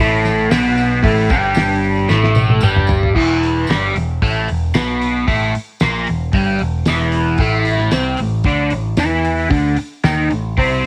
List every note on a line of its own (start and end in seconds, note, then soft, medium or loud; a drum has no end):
0.00 0.47 A1 medium
0.00 0.51 A2 loud
0.00 0.52 A3 loud
0.00 tambourine medium
0.25 snare soft
0.25 tambourine medium
0.38 tambourine soft
0.51 1.01 B1 medium
0.51 1.02 B2 loud
0.51 1.04 B3 loud
0.51 snare loud
0.51 open hi-hat medium
0.51 tambourine loud
0.77 tambourine medium
0.91 tambourine soft
1.03 1.29 A1 loud
1.03 1.29 A2 medium
1.03 1.30 A3 loud
1.03 kick loud
1.03 open hi-hat medium
1.03 tambourine soft
1.17 tambourine soft
1.29 2.06 G1 medium
1.29 2.09 G2 loud
1.29 2.10 G3 loud
1.29 kick loud
1.29 tambourine medium
1.43 tambourine soft
1.54 snare loud
1.54 open hi-hat medium
1.54 tambourine medium
1.69 tambourine soft
1.82 tambourine soft
1.95 tambourine soft
2.08 2.60 A1 medium
2.08 2.61 A2 medium
2.08 2.62 A3 loud
2.08 snare medium
2.08 tambourine medium
2.22 snare medium
2.22 tambourine soft
2.35 high tom medium
2.35 tambourine medium
2.50 high tom medium
2.61 3.13 G1 medium
2.61 3.15 G2 medium
2.61 3.16 G3 loud
2.61 mid tom medium
2.61 tambourine loud
2.75 mid tom medium
2.75 tambourine soft
2.87 floor tom loud
2.87 tambourine medium
3.03 floor tom medium
3.15 3.66 E1 medium
3.15 3.68 E2 medium
3.15 3.68 E3 loud
3.15 kick loud
3.15 crash loud
3.43 open hi-hat medium
3.67 3.93 G1 medium
3.67 3.95 G2 medium
3.67 3.95 G3 medium
3.67 snare medium
3.67 open hi-hat medium
3.67 tambourine medium
3.95 4.20 E1 medium
3.95 4.17 E2 medium
3.95 open hi-hat medium
4.22 4.46 A1 medium
4.22 4.48 A2 medium
4.22 4.48 A3 medium
4.22 kick loud
4.22 open hi-hat medium
4.48 4.74 E1 medium
4.48 4.69 E2 medium
4.48 open hi-hat medium
4.74 5.24 B1 medium
4.74 5.26 B2 medium
4.74 5.27 B3 loud
4.74 snare loud
4.74 open hi-hat medium
4.74 tambourine loud
5.01 open hi-hat medium
5.27 5.52 A1 medium
5.27 5.53 A2 medium
5.27 5.53 A3 medium
5.27 kick loud
5.27 open hi-hat medium
5.54 muted overdriven electric guitar stroke medium
5.54 muted picked electric bass stroke soft
5.54 open hi-hat medium
5.80 6.06 A#1 loud
5.80 6.07 A#2 medium
5.80 6.07 A#3 loud
5.80 snare loud
5.80 open hi-hat medium
5.80 tambourine medium
6.07 6.33 E1 medium
6.07 6.29 E2 medium
6.07 open hi-hat medium
6.33 6.58 G1 medium
6.33 6.60 G2 loud
6.33 6.61 G3 loud
6.33 kick loud
6.33 open hi-hat medium
6.59 6.86 E1 medium
6.59 6.82 E2 medium
6.59 open hi-hat soft
6.86 7.37 E1 medium
6.86 7.40 E2 medium
6.86 7.40 E3 medium
6.86 snare loud
6.86 open hi-hat medium
6.86 tambourine loud
7.12 open hi-hat medium
7.38 7.89 A1 medium
7.38 7.92 A2 medium
7.38 7.92 A3 loud
7.38 kick loud
7.38 open hi-hat medium
7.65 open hi-hat medium
7.78 snare soft
7.91 8.17 C2 medium
7.91 8.18 C3 medium
7.91 8.19 C4 loud
7.91 snare loud
7.91 open hi-hat medium
7.91 tambourine loud
8.17 8.44 A1 medium
8.17 8.41 A2 medium
8.17 open hi-hat medium
8.44 8.70 D2 medium
8.44 8.71 D3 medium
8.44 8.72 D4 loud
8.44 kick loud
8.44 open hi-hat medium
8.70 8.97 A1 medium
8.70 8.94 A2 medium
8.70 open hi-hat medium
8.97 9.47 E2 medium
8.97 9.50 E3 medium
8.97 9.50 E4 medium
8.97 snare loud
8.97 open hi-hat medium
8.97 tambourine loud
9.25 open hi-hat medium
9.50 9.76 D2 medium
9.50 9.76 D3 loud
9.50 9.77 D4 loud
9.50 kick loud
9.50 open hi-hat medium
9.77 muted picked electric bass stroke soft
9.77 muted overdriven electric guitar stroke medium
9.77 open hi-hat medium
10.04 10.29 D#2 medium
10.04 10.30 D#3 medium
10.04 10.31 D#4 medium
10.04 snare loud
10.04 open hi-hat medium
10.04 tambourine medium
10.30 10.56 A1 medium
10.30 10.52 A2 medium
10.30 open hi-hat medium
10.57 10.82 C2 medium
10.57 10.83 C3 medium
10.57 10.83 C4 medium
10.57 kick loud
10.57 open hi-hat medium